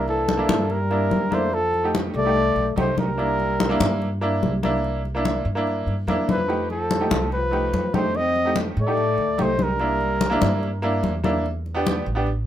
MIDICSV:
0, 0, Header, 1, 6, 480
1, 0, Start_track
1, 0, Key_signature, 0, "major"
1, 0, Tempo, 413223
1, 1782, Time_signature, 4, 2, 24, 8
1, 14482, End_track
2, 0, Start_track
2, 0, Title_t, "Trumpet"
2, 0, Program_c, 0, 56
2, 104, Note_on_c, 0, 69, 79
2, 828, Note_on_c, 0, 70, 86
2, 846, Note_off_c, 0, 69, 0
2, 1557, Note_on_c, 0, 72, 95
2, 1574, Note_off_c, 0, 70, 0
2, 1788, Note_on_c, 0, 69, 99
2, 1805, Note_off_c, 0, 72, 0
2, 2265, Note_off_c, 0, 69, 0
2, 2508, Note_on_c, 0, 74, 99
2, 3179, Note_off_c, 0, 74, 0
2, 3239, Note_on_c, 0, 72, 83
2, 3455, Note_off_c, 0, 72, 0
2, 3474, Note_on_c, 0, 70, 98
2, 4864, Note_off_c, 0, 70, 0
2, 7323, Note_on_c, 0, 71, 89
2, 7762, Note_off_c, 0, 71, 0
2, 7794, Note_on_c, 0, 69, 84
2, 8463, Note_off_c, 0, 69, 0
2, 8512, Note_on_c, 0, 71, 92
2, 9182, Note_off_c, 0, 71, 0
2, 9237, Note_on_c, 0, 72, 96
2, 9479, Note_on_c, 0, 75, 112
2, 9497, Note_off_c, 0, 72, 0
2, 9952, Note_off_c, 0, 75, 0
2, 10227, Note_on_c, 0, 74, 94
2, 10942, Note_on_c, 0, 72, 89
2, 10959, Note_off_c, 0, 74, 0
2, 11183, Note_on_c, 0, 70, 92
2, 11200, Note_off_c, 0, 72, 0
2, 12600, Note_off_c, 0, 70, 0
2, 14482, End_track
3, 0, Start_track
3, 0, Title_t, "Upright piano"
3, 0, Program_c, 1, 0
3, 0, Note_on_c, 1, 58, 70
3, 0, Note_on_c, 1, 62, 64
3, 0, Note_on_c, 1, 64, 76
3, 265, Note_off_c, 1, 58, 0
3, 270, Note_off_c, 1, 62, 0
3, 275, Note_off_c, 1, 64, 0
3, 433, Note_on_c, 1, 58, 73
3, 448, Note_on_c, 1, 62, 71
3, 453, Note_on_c, 1, 64, 83
3, 867, Note_off_c, 1, 58, 0
3, 874, Note_off_c, 1, 62, 0
3, 877, Note_off_c, 1, 64, 0
3, 1052, Note_on_c, 1, 58, 68
3, 1059, Note_on_c, 1, 62, 62
3, 1070, Note_on_c, 1, 64, 78
3, 1393, Note_off_c, 1, 58, 0
3, 1396, Note_off_c, 1, 62, 0
3, 1402, Note_off_c, 1, 64, 0
3, 1521, Note_on_c, 1, 58, 68
3, 1529, Note_on_c, 1, 62, 63
3, 1539, Note_on_c, 1, 64, 79
3, 1771, Note_off_c, 1, 58, 0
3, 1775, Note_off_c, 1, 62, 0
3, 1780, Note_off_c, 1, 64, 0
3, 2130, Note_on_c, 1, 57, 70
3, 2143, Note_on_c, 1, 63, 68
3, 2150, Note_on_c, 1, 67, 76
3, 2472, Note_off_c, 1, 57, 0
3, 2479, Note_off_c, 1, 63, 0
3, 2482, Note_off_c, 1, 67, 0
3, 2614, Note_on_c, 1, 57, 72
3, 2624, Note_on_c, 1, 63, 62
3, 2632, Note_on_c, 1, 67, 77
3, 3039, Note_off_c, 1, 57, 0
3, 3044, Note_off_c, 1, 63, 0
3, 3048, Note_off_c, 1, 67, 0
3, 3206, Note_on_c, 1, 57, 71
3, 3217, Note_on_c, 1, 63, 65
3, 3227, Note_on_c, 1, 67, 78
3, 3551, Note_off_c, 1, 57, 0
3, 3556, Note_off_c, 1, 63, 0
3, 3561, Note_off_c, 1, 67, 0
3, 3690, Note_on_c, 1, 58, 73
3, 3696, Note_on_c, 1, 62, 64
3, 3703, Note_on_c, 1, 64, 78
3, 4117, Note_off_c, 1, 58, 0
3, 4120, Note_off_c, 1, 62, 0
3, 4124, Note_off_c, 1, 64, 0
3, 4289, Note_on_c, 1, 58, 91
3, 4299, Note_on_c, 1, 62, 84
3, 4312, Note_on_c, 1, 64, 99
3, 4717, Note_off_c, 1, 58, 0
3, 4722, Note_off_c, 1, 62, 0
3, 4728, Note_off_c, 1, 64, 0
3, 4894, Note_on_c, 1, 58, 81
3, 4897, Note_on_c, 1, 62, 77
3, 4908, Note_on_c, 1, 64, 93
3, 5235, Note_off_c, 1, 58, 0
3, 5237, Note_off_c, 1, 62, 0
3, 5242, Note_off_c, 1, 64, 0
3, 5379, Note_on_c, 1, 58, 80
3, 5387, Note_on_c, 1, 62, 77
3, 5398, Note_on_c, 1, 64, 96
3, 5802, Note_off_c, 1, 58, 0
3, 5806, Note_off_c, 1, 62, 0
3, 5812, Note_off_c, 1, 64, 0
3, 5978, Note_on_c, 1, 58, 79
3, 5992, Note_on_c, 1, 62, 81
3, 6002, Note_on_c, 1, 64, 91
3, 6318, Note_off_c, 1, 58, 0
3, 6325, Note_off_c, 1, 62, 0
3, 6330, Note_off_c, 1, 64, 0
3, 6449, Note_on_c, 1, 58, 79
3, 6460, Note_on_c, 1, 62, 74
3, 6471, Note_on_c, 1, 64, 93
3, 6878, Note_off_c, 1, 58, 0
3, 6883, Note_off_c, 1, 62, 0
3, 6889, Note_off_c, 1, 64, 0
3, 7059, Note_on_c, 1, 58, 84
3, 7067, Note_on_c, 1, 62, 74
3, 7079, Note_on_c, 1, 64, 91
3, 7398, Note_off_c, 1, 58, 0
3, 7403, Note_off_c, 1, 62, 0
3, 7408, Note_off_c, 1, 64, 0
3, 7526, Note_on_c, 1, 57, 69
3, 7534, Note_on_c, 1, 63, 64
3, 7544, Note_on_c, 1, 67, 76
3, 7956, Note_off_c, 1, 57, 0
3, 7960, Note_off_c, 1, 63, 0
3, 7965, Note_off_c, 1, 67, 0
3, 8129, Note_on_c, 1, 57, 75
3, 8142, Note_on_c, 1, 63, 70
3, 8150, Note_on_c, 1, 67, 82
3, 8557, Note_off_c, 1, 57, 0
3, 8564, Note_off_c, 1, 63, 0
3, 8568, Note_off_c, 1, 67, 0
3, 8725, Note_on_c, 1, 57, 73
3, 8733, Note_on_c, 1, 63, 65
3, 8748, Note_on_c, 1, 67, 74
3, 9071, Note_off_c, 1, 57, 0
3, 9075, Note_off_c, 1, 63, 0
3, 9083, Note_off_c, 1, 67, 0
3, 9219, Note_on_c, 1, 57, 69
3, 9227, Note_on_c, 1, 63, 61
3, 9237, Note_on_c, 1, 67, 76
3, 9642, Note_off_c, 1, 57, 0
3, 9646, Note_off_c, 1, 63, 0
3, 9651, Note_off_c, 1, 67, 0
3, 9817, Note_on_c, 1, 57, 73
3, 9835, Note_on_c, 1, 63, 64
3, 9838, Note_on_c, 1, 67, 79
3, 10157, Note_off_c, 1, 57, 0
3, 10165, Note_off_c, 1, 63, 0
3, 10167, Note_off_c, 1, 67, 0
3, 10298, Note_on_c, 1, 57, 72
3, 10305, Note_on_c, 1, 63, 61
3, 10315, Note_on_c, 1, 67, 79
3, 10721, Note_off_c, 1, 57, 0
3, 10724, Note_off_c, 1, 63, 0
3, 10729, Note_off_c, 1, 67, 0
3, 10893, Note_on_c, 1, 57, 70
3, 10897, Note_on_c, 1, 63, 68
3, 10908, Note_on_c, 1, 67, 76
3, 11234, Note_off_c, 1, 57, 0
3, 11236, Note_off_c, 1, 63, 0
3, 11242, Note_off_c, 1, 67, 0
3, 11377, Note_on_c, 1, 58, 75
3, 11384, Note_on_c, 1, 62, 67
3, 11394, Note_on_c, 1, 64, 81
3, 11799, Note_off_c, 1, 58, 0
3, 11802, Note_off_c, 1, 62, 0
3, 11808, Note_off_c, 1, 64, 0
3, 11961, Note_on_c, 1, 58, 95
3, 11976, Note_on_c, 1, 62, 87
3, 11986, Note_on_c, 1, 64, 103
3, 12390, Note_off_c, 1, 58, 0
3, 12398, Note_off_c, 1, 62, 0
3, 12403, Note_off_c, 1, 64, 0
3, 12572, Note_on_c, 1, 58, 90
3, 12583, Note_on_c, 1, 62, 74
3, 12589, Note_on_c, 1, 64, 94
3, 12911, Note_off_c, 1, 58, 0
3, 12917, Note_off_c, 1, 62, 0
3, 12920, Note_off_c, 1, 64, 0
3, 13051, Note_on_c, 1, 58, 84
3, 13061, Note_on_c, 1, 62, 71
3, 13068, Note_on_c, 1, 64, 95
3, 13295, Note_off_c, 1, 58, 0
3, 13299, Note_off_c, 1, 62, 0
3, 13303, Note_off_c, 1, 64, 0
3, 13643, Note_on_c, 1, 59, 87
3, 13651, Note_on_c, 1, 62, 83
3, 13665, Note_on_c, 1, 67, 96
3, 13985, Note_off_c, 1, 59, 0
3, 13989, Note_off_c, 1, 62, 0
3, 13996, Note_off_c, 1, 67, 0
3, 14114, Note_on_c, 1, 59, 83
3, 14125, Note_on_c, 1, 62, 79
3, 14133, Note_on_c, 1, 67, 88
3, 14245, Note_off_c, 1, 59, 0
3, 14250, Note_off_c, 1, 62, 0
3, 14254, Note_off_c, 1, 67, 0
3, 14482, End_track
4, 0, Start_track
4, 0, Title_t, "Trombone"
4, 0, Program_c, 2, 57
4, 90, Note_on_c, 2, 52, 70
4, 812, Note_on_c, 2, 55, 74
4, 829, Note_off_c, 2, 52, 0
4, 1548, Note_on_c, 2, 57, 77
4, 1565, Note_off_c, 2, 55, 0
4, 1784, Note_on_c, 2, 53, 76
4, 1802, Note_off_c, 2, 57, 0
4, 2263, Note_off_c, 2, 53, 0
4, 2503, Note_on_c, 2, 57, 99
4, 3177, Note_off_c, 2, 57, 0
4, 3218, Note_on_c, 2, 57, 78
4, 3443, Note_off_c, 2, 57, 0
4, 3450, Note_on_c, 2, 55, 80
4, 4851, Note_off_c, 2, 55, 0
4, 7306, Note_on_c, 2, 53, 69
4, 7752, Note_off_c, 2, 53, 0
4, 7786, Note_on_c, 2, 53, 73
4, 8459, Note_off_c, 2, 53, 0
4, 8539, Note_on_c, 2, 53, 76
4, 9195, Note_off_c, 2, 53, 0
4, 9246, Note_on_c, 2, 57, 78
4, 9491, Note_on_c, 2, 60, 91
4, 9508, Note_off_c, 2, 57, 0
4, 9958, Note_off_c, 2, 60, 0
4, 10215, Note_on_c, 2, 57, 94
4, 10919, Note_off_c, 2, 57, 0
4, 10919, Note_on_c, 2, 57, 78
4, 11162, Note_on_c, 2, 55, 72
4, 11179, Note_off_c, 2, 57, 0
4, 12589, Note_off_c, 2, 55, 0
4, 14482, End_track
5, 0, Start_track
5, 0, Title_t, "Upright bass"
5, 0, Program_c, 3, 32
5, 0, Note_on_c, 3, 36, 77
5, 510, Note_off_c, 3, 36, 0
5, 565, Note_on_c, 3, 43, 91
5, 1247, Note_off_c, 3, 43, 0
5, 1293, Note_on_c, 3, 41, 83
5, 2428, Note_off_c, 3, 41, 0
5, 2489, Note_on_c, 3, 36, 87
5, 2942, Note_off_c, 3, 36, 0
5, 2967, Note_on_c, 3, 35, 73
5, 3198, Note_off_c, 3, 35, 0
5, 3212, Note_on_c, 3, 36, 87
5, 4348, Note_off_c, 3, 36, 0
5, 4414, Note_on_c, 3, 43, 91
5, 5093, Note_off_c, 3, 43, 0
5, 5139, Note_on_c, 3, 36, 85
5, 6272, Note_off_c, 3, 36, 0
5, 6331, Note_on_c, 3, 43, 84
5, 6784, Note_off_c, 3, 43, 0
5, 6813, Note_on_c, 3, 43, 68
5, 7042, Note_off_c, 3, 43, 0
5, 7052, Note_on_c, 3, 41, 84
5, 8189, Note_off_c, 3, 41, 0
5, 8255, Note_on_c, 3, 36, 86
5, 8934, Note_off_c, 3, 36, 0
5, 8980, Note_on_c, 3, 41, 84
5, 10111, Note_off_c, 3, 41, 0
5, 10184, Note_on_c, 3, 45, 94
5, 10630, Note_off_c, 3, 45, 0
5, 10657, Note_on_c, 3, 38, 73
5, 10883, Note_off_c, 3, 38, 0
5, 10899, Note_on_c, 3, 36, 81
5, 12029, Note_off_c, 3, 36, 0
5, 12099, Note_on_c, 3, 43, 90
5, 12772, Note_off_c, 3, 43, 0
5, 12812, Note_on_c, 3, 40, 86
5, 13942, Note_off_c, 3, 40, 0
5, 14013, Note_on_c, 3, 33, 90
5, 14459, Note_off_c, 3, 33, 0
5, 14482, End_track
6, 0, Start_track
6, 0, Title_t, "Drums"
6, 90, Note_on_c, 9, 63, 34
6, 207, Note_off_c, 9, 63, 0
6, 332, Note_on_c, 9, 63, 86
6, 448, Note_off_c, 9, 63, 0
6, 570, Note_on_c, 9, 63, 92
6, 686, Note_off_c, 9, 63, 0
6, 811, Note_on_c, 9, 63, 33
6, 927, Note_off_c, 9, 63, 0
6, 1055, Note_on_c, 9, 63, 33
6, 1171, Note_off_c, 9, 63, 0
6, 1293, Note_on_c, 9, 63, 79
6, 1409, Note_off_c, 9, 63, 0
6, 1532, Note_on_c, 9, 63, 77
6, 1648, Note_off_c, 9, 63, 0
6, 1780, Note_on_c, 9, 63, 34
6, 1896, Note_off_c, 9, 63, 0
6, 2021, Note_on_c, 9, 63, 32
6, 2137, Note_off_c, 9, 63, 0
6, 2262, Note_on_c, 9, 63, 82
6, 2378, Note_off_c, 9, 63, 0
6, 2742, Note_on_c, 9, 63, 30
6, 2858, Note_off_c, 9, 63, 0
6, 2976, Note_on_c, 9, 63, 34
6, 3092, Note_off_c, 9, 63, 0
6, 3225, Note_on_c, 9, 63, 80
6, 3341, Note_off_c, 9, 63, 0
6, 3457, Note_on_c, 9, 63, 79
6, 3573, Note_off_c, 9, 63, 0
6, 3709, Note_on_c, 9, 63, 34
6, 3825, Note_off_c, 9, 63, 0
6, 3947, Note_on_c, 9, 63, 34
6, 4063, Note_off_c, 9, 63, 0
6, 4184, Note_on_c, 9, 63, 89
6, 4300, Note_off_c, 9, 63, 0
6, 4420, Note_on_c, 9, 63, 92
6, 4536, Note_off_c, 9, 63, 0
6, 4666, Note_on_c, 9, 63, 32
6, 4782, Note_off_c, 9, 63, 0
6, 4901, Note_on_c, 9, 63, 34
6, 5017, Note_off_c, 9, 63, 0
6, 5144, Note_on_c, 9, 63, 76
6, 5260, Note_off_c, 9, 63, 0
6, 5382, Note_on_c, 9, 63, 76
6, 5499, Note_off_c, 9, 63, 0
6, 5627, Note_on_c, 9, 63, 34
6, 5743, Note_off_c, 9, 63, 0
6, 5870, Note_on_c, 9, 63, 34
6, 5986, Note_off_c, 9, 63, 0
6, 6102, Note_on_c, 9, 63, 78
6, 6218, Note_off_c, 9, 63, 0
6, 6588, Note_on_c, 9, 63, 31
6, 6705, Note_off_c, 9, 63, 0
6, 6827, Note_on_c, 9, 63, 35
6, 6943, Note_off_c, 9, 63, 0
6, 7067, Note_on_c, 9, 63, 79
6, 7184, Note_off_c, 9, 63, 0
6, 7305, Note_on_c, 9, 63, 84
6, 7421, Note_off_c, 9, 63, 0
6, 7547, Note_on_c, 9, 63, 33
6, 7663, Note_off_c, 9, 63, 0
6, 7783, Note_on_c, 9, 63, 33
6, 7900, Note_off_c, 9, 63, 0
6, 8024, Note_on_c, 9, 63, 87
6, 8140, Note_off_c, 9, 63, 0
6, 8261, Note_on_c, 9, 63, 95
6, 8377, Note_off_c, 9, 63, 0
6, 8505, Note_on_c, 9, 63, 31
6, 8621, Note_off_c, 9, 63, 0
6, 8746, Note_on_c, 9, 63, 31
6, 8862, Note_off_c, 9, 63, 0
6, 8987, Note_on_c, 9, 63, 78
6, 9103, Note_off_c, 9, 63, 0
6, 9224, Note_on_c, 9, 63, 83
6, 9340, Note_off_c, 9, 63, 0
6, 9463, Note_on_c, 9, 63, 34
6, 9579, Note_off_c, 9, 63, 0
6, 9708, Note_on_c, 9, 63, 35
6, 9824, Note_off_c, 9, 63, 0
6, 9940, Note_on_c, 9, 63, 84
6, 10056, Note_off_c, 9, 63, 0
6, 10423, Note_on_c, 9, 63, 32
6, 10539, Note_off_c, 9, 63, 0
6, 10661, Note_on_c, 9, 63, 31
6, 10777, Note_off_c, 9, 63, 0
6, 10905, Note_on_c, 9, 63, 76
6, 11021, Note_off_c, 9, 63, 0
6, 11139, Note_on_c, 9, 63, 80
6, 11255, Note_off_c, 9, 63, 0
6, 11377, Note_on_c, 9, 63, 36
6, 11493, Note_off_c, 9, 63, 0
6, 11625, Note_on_c, 9, 63, 35
6, 11741, Note_off_c, 9, 63, 0
6, 11859, Note_on_c, 9, 63, 85
6, 11975, Note_off_c, 9, 63, 0
6, 12099, Note_on_c, 9, 63, 94
6, 12215, Note_off_c, 9, 63, 0
6, 12348, Note_on_c, 9, 63, 33
6, 12464, Note_off_c, 9, 63, 0
6, 12582, Note_on_c, 9, 63, 33
6, 12698, Note_off_c, 9, 63, 0
6, 12819, Note_on_c, 9, 63, 79
6, 12935, Note_off_c, 9, 63, 0
6, 13058, Note_on_c, 9, 63, 78
6, 13174, Note_off_c, 9, 63, 0
6, 13309, Note_on_c, 9, 63, 35
6, 13425, Note_off_c, 9, 63, 0
6, 13544, Note_on_c, 9, 63, 33
6, 13660, Note_off_c, 9, 63, 0
6, 13783, Note_on_c, 9, 63, 89
6, 13900, Note_off_c, 9, 63, 0
6, 14251, Note_on_c, 9, 63, 32
6, 14367, Note_off_c, 9, 63, 0
6, 14482, End_track
0, 0, End_of_file